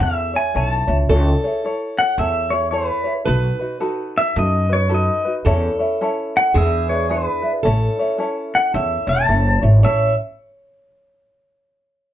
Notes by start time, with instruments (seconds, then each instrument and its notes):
Already playing: steel-string acoustic guitar A4
0.00 upright bass E2, ukulele C#4 E4 A4 C#5, pedal steel guitar E5
0.34 ukulele C#4 E4 C#5, pedal steel guitar G#5
0.54 upright bass B1, ukulele C#4 E4 A4 C#5, pedal steel guitar A5
0.87 upright bass C#2, ukulele C#4 E4 C#5
1.09 upright bass C#2, ukulele E4 G#4 A4 C#5, steel-string acoustic guitar A4
1.44 ukulele E4 G#4 C#5
1.64 ukulele E4 A4 C#5
1.99 pedal steel guitar F#5
2.18 upright bass E2, ukulele E4 G#4 A4 C#5, pedal steel guitar E5
2.50 ukulele E4 G#4 C#5, pedal steel guitar C#5
2.71 ukulele E4 G#4 A4 C#5, pedal steel guitar B4
3.04 ukulele E4 G#4 C#5
3.25 upright bass B1, ukulele D#4 F#4 A4 B4, steel-string acoustic guitar B4
3.59 ukulele D#4 F#4 B4
3.80 ukulele D#4 F#4 A4 B4
4.18 pedal steel guitar E5
4.36 upright bass F#2, ukulele D#4 F#4 A4 B4, pedal steel guitar D#5
4.69 ukulele D#4 F#4 B4, pedal steel guitar C#5
4.89 ukulele D#4 F#4 A4 B4
4.95 pedal steel guitar D#5
5.25 ukulele D#4 F#4 B4
5.45 upright bass E2, ukulele C#4 E4 A4 C#5, steel-string acoustic guitar A4
5.79 ukulele C#4 E4 C#5
6.01 ukulele C#4 E4 A4 C#5
6.37 pedal steel guitar F#5
6.54 upright bass E2, ukulele D4 E4 G#4 B4, steel-string acoustic guitar G#4, pedal steel guitar E5
6.89 ukulele D4 E4 B4, pedal steel guitar C#5
7.09 ukulele D4 E4 G#4 B4, pedal steel guitar B4
7.42 ukulele D4 E4 B4
7.63 upright bass A1, ukulele C#4 E4 A4 C#5, steel-string acoustic guitar A4
7.99 ukulele C#4 E4 C#5
8.18 ukulele C#4 E4 A4 C#5
8.55 pedal steel guitar F#5
8.72 upright bass E2, ukulele C#4 E4 A4 C#5, pedal steel guitar E5
9.07 upright bass E1, ukulele C#4 E4 C#5, pedal steel guitar A5
9.28 upright bass F#1, ukulele C#4 E4 A4 C#5
9.62 upright bass G#1, ukulele C#4 E4 C#5
9.83 upright bass A1, ukulele C#4 E4 A4 C#5, steel-string acoustic guitar C#5, pedal steel guitar E5